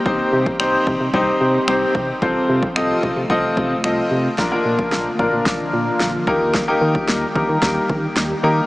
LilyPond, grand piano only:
\new Staff \with { instrumentName = "Grand piano" } { \time 4/4 \key bes \major \tempo 4 = 111 <c' ees' g' c''>8. r16 <c' ees' g' c''>8. r16 <c' ees' g' c''>8. r16 <c' ees' g' c''>8. r16 | <c' f' a' c''>8. r16 <c' f' a' ees''>8. r16 <c' f' a' ees''>8. r16 <c' f' a' ees''>8. r16 | <bes d' f' bes'>16 <bes d' f' bes'>4 r16 <bes d' f' bes'>4. r8 <bes ees' g' bes'>8 | r16 <bes ees' g' bes'>4 r16 <bes ees' g' bes'>4. r8 <bes ees' g' bes'>8 | }